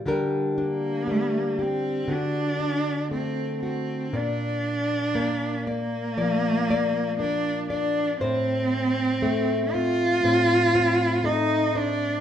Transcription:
<<
  \new Staff \with { instrumentName = "Cello" } { \time 4/4 \key bes \major \tempo 4 = 59 r8 bes4 c'8 d'4 c'8 c'8 | d'4. bes4. d'8 d'8 | c'4. f'4. ees'8 d'8 | }
  \new Staff \with { instrumentName = "Nylon-string guitar" } { \time 4/4 \key bes \major << { <g d' g' bes'>8 d'4 g'8 fis'8 d'4 fis'8 | d''4. d''8 d''8 d''4 d''8 | c''4. c'8 c'8 c'4 c''8 | } \\ { d4 g4 d4 a4 | bes,4 bes4 f4 bes4 | a,4 a4 a,4 a4 | } >> }
>>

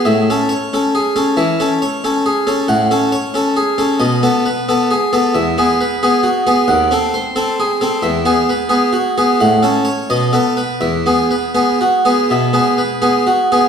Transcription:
\new Staff \with { instrumentName = "Harpsichord" } { \time 12/8 \key a \major \tempo 4. = 89 <a, e''>8 <cis' a'>8 cis''8 <cis' a'>8 gis'8 <cis' a'>8 <e e''>8 <cis' a'>8 cis''8 <cis' a'>8 gis'8 <cis' a'>8 | \key e \major <a, fis''>8 <cis' a'>8 cis''8 <cis' a'>8 gis'8 <cis' a'>8 <b, dis''>8 <b a'>8 b'8 <b a'>8 gis'8 <b a'>8 | <e, e''>8 <b gis'>8 b'8 <b gis'>8 fis'8 <b gis'>8 <dis, fis''>8 <bis a'>8 bis'8 <bis a'>8 gis'8 <bis a'>8 | <e, e''>8 <b gis'>8 b'8 <b gis'>8 fis'8 <b gis'>8 <a, fis''>8 <cis' a'>8 cis''8 <b, dis''>8 <b a'>8 b'8 |
<e, e''>8 <b gis'>8 b'8 <b gis'>8 fis'8 <b gis'>8 <b, e''>8 <b gis'>8 b'8 <b gis'>8 fis'8 <b gis'>8 | }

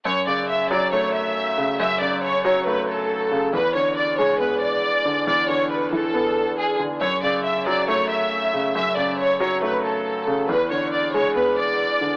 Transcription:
<<
  \new Staff \with { instrumentName = "Violin section" } { \time 4/4 \key fis \minor \tempo 4 = 138 cis''8 d''8 e''8 d''8 cis''8 e''4. | e''8 d''8 cis''8 cis''8 b'8 a'4. | b'8 cis''8 d''8 cis''8 b'8 d''4. | d''8 cis''8 b'8 a'4. gis'8 r8 |
cis''8 d''8 e''8 d''8 cis''8 e''4. | e''8 d''8 cis''8 cis''8 b'8 a'4. | b'8 cis''8 d''8 cis''8 b'8 d''4. | }
  \new Staff \with { instrumentName = "Grand piano" } { \clef bass \time 4/4 \key fis \minor fis,8 cis4 fis8 a4. cis8 | fis,8 cis4 fis8 a4. cis8 | e,8 d4 gis8 b4. d8 | e,8 d4 e8 b4. d8 |
fis,8 cis4 fis8 a4. cis8 | fis,8 cis4 fis8 a4. cis8 | e,8 d4 gis8 b4. d8 | }
>>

